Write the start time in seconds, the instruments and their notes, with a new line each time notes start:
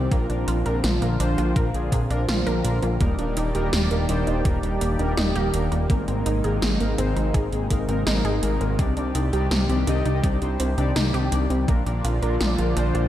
Already playing: analog synth pad C4
0.11 analog synth bass A#1, analog synth pad A#2 D3 F3 F4, synth arpeggio sound A#3, analog polysynth D4 F4 A#4, kick, closed hi-hat
0.30 analog synth bass A#1, synth arpeggio sound D4, analog polysynth D4 F4 A#4, closed hi-hat
0.48 analog synth bass A#1, synth arpeggio sound F4, closed hi-hat
0.66 analog synth bass A#1, analog polysynth D4 F4 A#4, synth arpeggio sound A#4, closed hi-hat
0.84 analog synth bass A#1, snare, closed hi-hat
1.02 analog synth bass A#1, synth arpeggio sound A#3, analog polysynth D4 F4 A#4, closed hi-hat
1.20 analog synth bass A#1, analog polysynth D4 F4 C5, synth arpeggio sound D4, closed hi-hat
1.38 analog synth bass A#1, synth arpeggio sound F4, closed hi-hat
1.56 analog synth bass A#1, analog polysynth D4 F4 A#4, synth arpeggio sound A#4, kick, closed hi-hat
1.74 analog synth bass A#1, analog polysynth D4 F4 G#4, closed hi-hat
1.92 analog synth bass A#1, synth arpeggio sound A#3, kick, closed hi-hat
2.10 analog synth bass A#1, analog polysynth D4 F4 A#4, synth arpeggio sound D4, closed hi-hat
2.28 analog synth bass A#1, synth arpeggio sound F4, snare, closed hi-hat
2.46 analog synth bass A#1, analog polysynth D4 F4 A#4, synth arpeggio sound A#4, closed hi-hat
2.64 analog synth bass A#1, analog polysynth D4 F4 A#4, closed hi-hat
2.82 analog synth bass A#1, synth arpeggio sound A#3, closed hi-hat
3.00 analog synth bass D#1, analog synth pad D#3 G3 A#3 G4 D5, analog polysynth G3 A#3 D4 D#4 A#4, synth arpeggio sound A#3, kick, closed hi-hat
3.19 analog synth bass D#1, analog polysynth G3 A#3 D4 D#4 A#4, synth arpeggio sound D4, closed hi-hat
3.37 analog synth bass D#1, synth arpeggio sound D#4, closed hi-hat
3.55 analog synth bass D#1, analog polysynth G3 A#3 D4 D#4 A#4, synth arpeggio sound G4, closed hi-hat
3.73 analog synth bass D#1, snare, closed hi-hat
3.91 analog synth bass D#1, analog polysynth G3 A#3 D4 D#4 A#4, synth arpeggio sound A#3, closed hi-hat
4.09 analog synth bass D#1, analog polysynth G3 A#3 D4 D#4 C5, synth arpeggio sound D4, closed hi-hat
4.27 analog synth bass D#1, synth arpeggio sound D#4, closed hi-hat
4.45 analog synth bass D#1, analog polysynth G3 A#3 D4 D#4 A#4, synth arpeggio sound G4, kick, closed hi-hat
4.63 analog synth bass D#1, analog polysynth G3 A#3 D4 D#4 G4, closed hi-hat
4.81 analog synth bass D#1, synth arpeggio sound A#3, closed hi-hat
4.99 analog synth bass D#1, analog polysynth G3 A#3 D4 D#4 A#4, synth arpeggio sound D4, closed hi-hat
5.17 analog synth bass D#1, synth arpeggio sound D#4, snare, closed hi-hat
5.35 analog synth bass D#1, analog polysynth G3 A#3 D4 D#4 A#4, synth arpeggio sound G4, closed hi-hat
5.54 analog synth bass D#1, analog polysynth G3 A#3 D4 D#4 A#4, closed hi-hat
5.72 analog synth bass D#1, synth arpeggio sound A#3, closed hi-hat
5.90 analog synth bass G#1, analog synth pad C3 D#3 G#3 D#4, analog polysynth G#3 A#3 C4 D#4 A#4, synth arpeggio sound A#3, kick, closed hi-hat
6.08 analog synth bass G#1, analog polysynth G#3 A#3 C4 D#4 A#4, synth arpeggio sound C4, closed hi-hat
6.26 analog synth bass G#1, synth arpeggio sound D#4, closed hi-hat
6.44 analog synth bass G#1, analog polysynth G#3 A#3 C4 D#4 A#4, synth arpeggio sound G#4, closed hi-hat
6.62 analog synth bass G#1, snare, closed hi-hat
6.80 analog synth bass G#1, analog polysynth G#3 A#3 C4 D#4 A#4, synth arpeggio sound A#3, closed hi-hat
6.98 analog synth bass G#1, analog polysynth G#3 A#3 C4 D#4 C5, synth arpeggio sound C4, closed hi-hat
7.16 analog synth bass G#1, synth arpeggio sound D#4, closed hi-hat
7.34 analog synth bass G#1, analog polysynth G#3 A#3 C4 D#4 A#4, synth arpeggio sound G#4, kick, closed hi-hat
7.52 analog synth bass G#1, analog polysynth G#3 A#3 C4 D#4 G#4, closed hi-hat
7.70 analog synth bass G#1, analog polysynth G#3 A#3 C4 D#4 A#4, synth arpeggio sound A#3, kick, closed hi-hat
7.88 analog synth bass G#1, analog polysynth G#3 A#3 C4 D#4 A#4, synth arpeggio sound C4, closed hi-hat
8.07 analog synth bass G#1, analog polysynth G#3 A#3 C4 D#4 A#4, synth arpeggio sound D#4, snare, closed hi-hat
8.24 analog synth bass G#1, synth arpeggio sound G#4, closed hi-hat
8.43 analog synth bass G#1, analog polysynth G#3 A#3 C4 D#4 A#4, closed hi-hat
8.61 analog synth bass G#1, synth arpeggio sound A#3, closed hi-hat
8.79 analog synth bass C2, analog synth pad G3 G4, synth arpeggio sound C4, analog polysynth C4 D4 D#4 G4 D5, kick, closed hi-hat
8.97 analog synth bass C2, analog polysynth C4 D4 D#4 G4 D5, synth arpeggio sound D4, closed hi-hat
9.15 analog synth bass C2, synth arpeggio sound D#4, closed hi-hat
9.33 analog synth bass C2, analog polysynth C4 D4 D#4 G4 D5, synth arpeggio sound G4, closed hi-hat
9.51 analog synth bass C2, snare, closed hi-hat
9.69 analog synth bass C2, analog polysynth C4 D4 D#4 G4 D5, synth arpeggio sound C4, closed hi-hat
9.87 analog synth bass C2, analog polysynth C4 D#4 G4 D5 D#5, synth arpeggio sound D4, closed hi-hat
10.05 analog synth bass C2, synth arpeggio sound D#4, closed hi-hat
10.23 analog synth bass C2, analog polysynth C4 D4 D#4 G4 D5, synth arpeggio sound G4, kick, closed hi-hat
10.41 analog synth bass C2, analog polysynth C4 D4 D#4 G4 C5, closed hi-hat
10.60 analog synth bass C2, synth arpeggio sound C4, closed hi-hat
10.78 analog synth bass C2, analog polysynth C4 D4 D#4 G4 D5, synth arpeggio sound D4, closed hi-hat
10.96 analog synth bass C2, synth arpeggio sound D#4, snare, closed hi-hat
11.14 analog synth bass C2, analog polysynth C4 D4 D#4 G4 D5, synth arpeggio sound G4, closed hi-hat
11.32 analog synth bass C2, analog polysynth C4 D4 D#4 G4 D5, closed hi-hat
11.50 analog synth bass C2, synth arpeggio sound C4, closed hi-hat
11.68 analog synth bass A#1, analog synth pad A#2 D3 F3 F4 D5, synth arpeggio sound A#3, analog polysynth D4 F4 A#4, kick, closed hi-hat
11.86 analog synth bass A#1, analog polysynth D4 F4 A#4, synth arpeggio sound D4, closed hi-hat
12.04 analog synth bass A#1, synth arpeggio sound F4, closed hi-hat
12.22 analog synth bass A#1, analog polysynth D4 F4 A#4, synth arpeggio sound A#4, closed hi-hat
12.41 analog synth bass A#1, snare, closed hi-hat
12.58 analog synth bass A#1, synth arpeggio sound A#3, analog polysynth D4 F4 A#4, closed hi-hat
12.77 analog synth bass A#1, synth arpeggio sound D4, analog polysynth D4 F4 C5, closed hi-hat
12.95 analog synth bass A#1, synth arpeggio sound F4, closed hi-hat